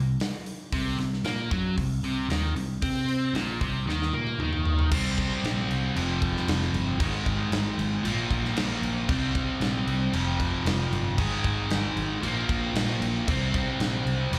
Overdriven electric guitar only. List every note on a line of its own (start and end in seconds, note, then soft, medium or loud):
0.00 0.15 C3 medium
0.73 0.98 C3 medium
1.00 1.20 C3 medium
1.25 1.50 A#3 medium
1.51 1.76 F#3 medium
1.78 1.99 C3 medium
2.04 2.29 C3 medium
2.30 2.55 D#3 medium
2.56 2.77 C3 medium
2.82 3.34 C4 loud
3.34 3.60 A#2 loud
3.61 3.86 C3 medium
3.87 4.12 D#3 medium
4.13 4.39 A#3 medium
4.40 4.91 D#3 medium
4.91 5.94 C3 medium
4.91 5.95 G3 medium
4.91 5.96 C4 loud
5.95 6.98 F2 medium
5.95 6.99 C3 medium
5.95 7.00 F3 loud
6.99 8.03 G#2 medium
6.99 8.03 D#3 medium
6.99 8.04 G#3 medium
8.03 9.07 A#2 loud
8.03 9.08 F3 loud
8.03 9.08 A#3 medium
9.09 10.12 C3 medium
9.09 10.13 G3 medium
9.09 10.13 C4 loud
10.13 11.16 F2 medium
10.13 11.17 C3 medium
10.13 11.18 F3 medium
11.17 12.21 G#2 medium
11.17 12.22 D#3 medium
11.17 12.22 G#3 loud
12.22 13.25 A#2 medium
12.22 13.26 F3 medium
12.22 13.27 A#3 loud
13.27 14.30 C3 medium
13.27 14.31 G3 medium
13.27 14.32 C4 loud
14.32 14.39 F2 medium
14.32 14.39 C3 medium
14.32 14.39 F3 medium